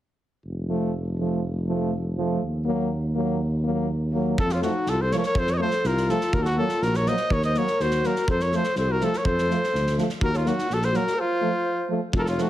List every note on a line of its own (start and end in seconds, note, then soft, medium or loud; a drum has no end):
0.45 2.38 F1 medium
0.69 0.93 F3 soft
0.69 0.94 A3 soft
1.19 1.43 F3 soft
1.19 1.43 A3 soft
1.68 1.93 F3 medium
1.68 1.92 A3 medium
2.18 2.42 F3 medium
2.18 2.41 A3 soft
2.41 4.34 D#2 medium
2.66 2.90 F#3 medium
2.66 2.90 A#3 medium
3.15 3.40 F#3 soft
3.15 3.39 A#3 medium
3.64 3.89 F#3 soft
3.64 3.88 A#3 soft
4.13 4.38 F#3 soft
4.13 4.37 A#3 soft
4.38 4.65 F2 medium
4.38 4.55 F4 medium
4.38 4.53 A4 medium
4.38 kick loud
4.49 4.63 F4 medium
4.49 snare soft
4.54 4.64 C#5 soft
4.61 4.73 F3 soft
4.61 4.71 A3 medium
4.61 4.91 F#4 medium
4.61 snare soft
4.66 4.91 D#4 medium
4.86 5.14 C2 medium
4.86 5.03 F4 medium
4.86 5.03 A4 medium
4.86 snare soft
5.01 5.16 A4 medium
5.01 5.14 C5 medium
5.12 5.23 F3 medium
5.12 5.22 A3 soft
5.12 5.17 A#4 medium
5.12 5.18 C#5 medium
5.12 snare soft
5.18 5.23 A#4 medium
5.18 5.24 C#5 medium
5.23 5.39 A#4 medium
5.23 5.40 C#5 medium
5.23 snare soft
5.35 5.63 F2 medium
5.35 5.53 A4 medium
5.35 5.51 C5 medium
5.35 kick loud
5.47 5.55 C#5 medium
5.47 snare soft
5.52 5.53 C5 medium
5.52 5.59 D#5 medium
5.57 5.70 F3 medium
5.57 5.69 A3 medium
5.57 5.62 A#4 medium
5.57 5.61 C#5 medium
5.62 5.89 A4 medium
5.62 5.88 C5 medium
5.71 snare soft
5.84 6.11 C2 loud
5.84 6.12 F4 medium
5.84 6.12 A#4 medium
5.84 snare soft
5.97 snare soft
6.09 6.19 F3 medium
6.09 6.19 A3 medium
6.09 6.39 F4 medium
6.09 6.35 A4 medium
6.09 snare soft
6.21 snare soft
6.33 6.60 D#2 medium
6.33 6.44 A#4 medium
6.33 kick medium
6.37 6.47 F#4 medium
6.43 6.51 F4 medium
6.43 6.57 F#4 medium
6.43 6.47 A4 soft
6.43 snare soft
6.50 6.60 D#4 medium
6.57 6.68 F#3 medium
6.57 6.67 A#3 medium
6.57 6.84 A4 medium
6.61 6.86 F4 medium
6.69 snare soft
6.82 7.09 A#1 loud
6.82 6.99 F#4 medium
6.82 6.98 A#4 medium
6.82 snare soft
6.94 7.10 A#4 medium
6.94 7.10 C#5 medium
6.94 snare soft
7.06 7.16 F#3 medium
7.06 7.16 A#3 medium
7.06 7.33 C5 medium
7.06 7.34 D#5 loud
7.06 snare soft
7.17 snare soft
7.30 7.57 D#2 medium
7.30 7.43 A#4 medium
7.30 7.44 C#5 medium
7.30 kick medium
7.42 7.58 C5 medium
7.42 7.60 D#5 medium
7.42 snare soft
7.54 7.66 F#3 medium
7.54 7.65 A#3 medium
7.54 7.83 A#4 medium
7.54 7.83 C#5 medium
7.54 snare soft
7.67 snare soft
7.79 8.06 D#2 medium
7.79 8.07 F#4 medium
7.79 8.08 C5 medium
7.79 snare soft
7.91 snare soft
8.04 8.14 F#3 soft
8.04 8.13 A#3 soft
8.04 8.28 F#4 medium
8.04 8.29 A#4 medium
8.04 snare soft
8.16 snare soft
8.28 8.55 F2 medium
8.28 8.44 A4 medium
8.28 8.43 C5 medium
8.28 kick medium
8.40 8.52 A#4 medium
8.40 8.57 C#5 medium
8.40 snare soft
8.51 8.63 F3 medium
8.51 8.63 A3 medium
8.51 8.76 A4 medium
8.51 snare soft
8.56 8.77 C5 medium
8.64 snare soft
8.76 9.03 C2 medium
8.76 8.90 A4 medium
8.76 8.93 C5 medium
8.76 snare soft
8.88 9.02 F#4 medium
8.88 9.05 A#4 medium
9.01 9.11 F3 medium
9.01 9.11 A3 medium
9.01 9.17 F4 medium
9.01 9.19 A4 medium
9.01 snare soft
9.13 9.25 A#4 medium
9.13 snare soft
9.17 9.26 C#5 medium
9.24 9.52 F2 medium
9.24 9.97 A4 medium
9.24 9.97 C5 medium
9.24 kick medium
9.38 snare soft
9.48 9.60 F3 medium
9.48 9.58 A3 medium
9.48 snare soft
9.64 snare soft
9.74 10.00 D2 medium
9.74 snare soft
9.87 snare soft
9.98 10.07 F3 medium
9.98 10.07 A3 medium
9.98 snare soft
10.09 snare soft
10.21 10.48 D#2 loud
10.21 10.35 F#4 medium
10.21 10.38 A#4 loud
10.21 kick medium
10.34 10.49 F4 medium
10.34 10.48 C#5 medium
10.34 snare soft
10.45 10.55 F#3 medium
10.45 10.55 A#3 medium
10.45 10.69 D#4 medium
10.45 10.75 F#4 medium
10.45 snare soft
10.59 snare soft
10.67 10.95 A#1 medium
10.67 10.81 F#4 medium
10.67 snare soft
10.73 10.86 A4 medium
10.79 10.93 A4 medium
10.79 snare soft
10.85 10.97 C5 medium
10.91 11.03 F#3 medium
10.91 11.03 A#3 medium
10.91 11.19 F#4 medium
10.91 snare soft
10.96 11.21 A#4 medium
11.07 snare soft
11.17 11.91 F4 medium
11.17 11.90 C5 medium
11.41 11.52 F3 medium
11.41 11.51 A3 medium
11.89 11.99 F3 medium
11.89 11.99 A3 soft
12.13 12.39 F1 medium
12.13 12.19 F4 medium
12.13 kick medium
12.17 12.26 F4 medium
12.17 12.22 F#4 medium
12.17 12.20 A4 medium
12.17 12.25 A#4 medium
12.24 12.28 A4 medium
12.24 snare soft
12.28 12.43 F4 medium
12.28 12.42 C#5 medium
12.38 12.47 F3 medium
12.38 12.48 A3 medium
12.38 12.50 D#4 medium
12.38 snare soft
12.42 12.50 F#4 medium